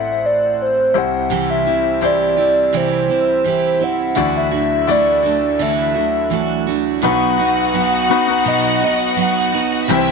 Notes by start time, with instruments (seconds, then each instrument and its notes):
Already playing: grand piano A1 A2 E4 A4 C5 D5, analog synth pad A3 C4 E4 C5 F#5, soft synth lead E5
0.26 soft synth lead D5
0.62 soft synth lead C5
0.94 grand piano C2 C3 E4 G4 C5, analog synth pad G3 E4 E5, soft synth lead F#5
1.30 steel-string acoustic guitar C3 E3 C4 E4 G4
1.50 soft synth lead E5
1.65 steel-string acoustic guitar C4 E4 G4
2.01 steel-string acoustic guitar E3 C4 E4 G4, grand piano E4 G4 C5, soft synth lead D5
2.37 steel-string acoustic guitar C4 E4 G4
2.73 steel-string acoustic guitar C3 E3 C4 E4 G4
2.77 soft synth lead C5
3.08 steel-string acoustic guitar C4 E4 G4
3.44 steel-string acoustic guitar E3 C4 E4 G4
3.79 steel-string acoustic guitar C4 E4 G4
3.84 soft synth lead F#5
4.15 grand piano D2 D3 E4 F#4 D5, steel-string acoustic guitar D3 E3 A3 D4 F#4, analog synth pad F#3 D4 A4
4.37 soft synth lead E5
4.51 steel-string acoustic guitar A3 D4 F#4
4.87 steel-string acoustic guitar E3 A3 D4 F#4, grand piano E4 F#4 D5
4.91 soft synth lead D5
5.23 steel-string acoustic guitar A3 D4 F#4
5.59 steel-string acoustic guitar D3 E3 A3 D4 F#4, soft synth lead E5
5.94 steel-string acoustic guitar A3 D4 F#4
6.30 steel-string acoustic guitar E3 A3 D4 F#4
6.67 steel-string acoustic guitar A3 D4 F#4
7.02 grand piano B1 B2 B3 D#4 F#4 B4, steel-string acoustic guitar B2 F#3 B3 D#4 F#4, analog synth pad F#3 B3 D#4 B4 D#5, violin section F#4 F#5, soft synth lead F#5
7.38 steel-string acoustic guitar B3 D#4 F#4
7.74 steel-string acoustic guitar F#3 B3 D#4 F#4, soft synth lead F#5
8.09 grand piano B3 D#4 F#4 B4, steel-string acoustic guitar B3 D#4 F#4
8.27 grand piano B3 D#4 F#4 B4
8.45 steel-string acoustic guitar B2 F#3 B3 D#4 F#4, soft synth lead D#5
8.80 steel-string acoustic guitar B3 D#4 F#4, soft synth lead D#5
9.16 steel-string acoustic guitar F#3 B3 D#4 F#4
9.21 soft synth lead F#5
9.52 steel-string acoustic guitar B3 D#4 F#4
9.88 grand piano C2 C3 C4 E4 G4 B4, steel-string acoustic guitar C3 E3 C4 E4 G4, analog synth pad E3 G3 C4 G4 C5, violin section E4 E5
9.92 soft synth lead G5
9.97 grand piano C5